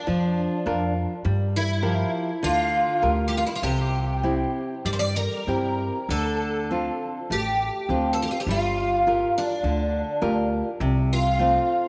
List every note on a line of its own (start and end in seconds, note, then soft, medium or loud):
0.00 0.92 D4 medium
0.07 0.45 F2 medium
0.07 0.64 F3 medium
0.66 1.04 F2 medium
0.66 1.13 D4 soft
0.66 1.13 F4 soft
0.66 1.13 A#4 soft
1.25 2.02 G2 loud
1.25 1.82 G3 medium
1.56 2.46 E4 medium
1.82 2.30 F3 soft
1.82 2.30 G4 soft
1.82 2.30 A#4 medium
2.43 2.82 D2 medium
2.43 3.01 D3 medium
2.43 3.27 F4 medium
3.02 3.42 D2 medium
3.02 3.50 F4 soft
3.02 3.50 G4 soft
3.02 3.51 A#4 soft
3.28 3.36 G4 medium
3.37 3.45 F4 medium
3.46 3.54 E4 medium
3.55 3.63 F4 medium
3.62 4.42 C2 medium
3.62 4.22 C3 medium
3.62 4.85 G4 medium
4.23 4.73 C4 soft
4.23 4.73 E4 soft
4.23 4.73 G4 soft
4.85 5.25 G2 medium
4.85 5.46 G3 soft
4.85 4.89 D5 medium
4.93 4.99 C5 medium
4.99 5.15 D5 medium
5.16 6.10 A#4 medium
5.47 5.88 G2 medium
5.47 5.97 C4 soft
5.47 5.97 E4 soft
5.47 5.98 G4 soft
6.09 6.87 D2 medium
6.09 6.69 D3 medium
6.09 7.27 A4 medium
6.71 7.18 C4 soft
6.71 7.19 D4 soft
6.71 7.19 F4 soft
7.30 7.68 A1 medium
7.30 7.87 A3 medium
7.30 8.13 G4 medium
7.89 8.27 D2 medium
7.89 8.36 C4 soft
7.89 8.36 D4 soft
7.89 8.36 F4 soft
8.13 8.21 A4 medium
8.22 8.30 G4 medium
8.31 8.39 F4 medium
8.40 8.48 G4 medium
8.47 9.22 G1 medium
8.47 9.04 G3 medium
8.47 9.32 F4 medium
9.07 9.53 F4 soft
9.07 9.53 G4 soft
9.07 9.53 A#4 medium
9.38 10.48 D4 medium
9.63 10.01 D2 medium
9.63 10.20 D3 medium
10.21 10.60 D2 medium
10.21 10.68 F4 soft
10.21 10.69 G4 soft
10.21 10.69 A#4 medium
10.80 11.56 C2 loud
10.80 11.37 C3 medium
11.13 11.88 F4 medium
11.39 11.85 A3 medium
11.39 11.86 C4 soft
11.39 11.86 F4 medium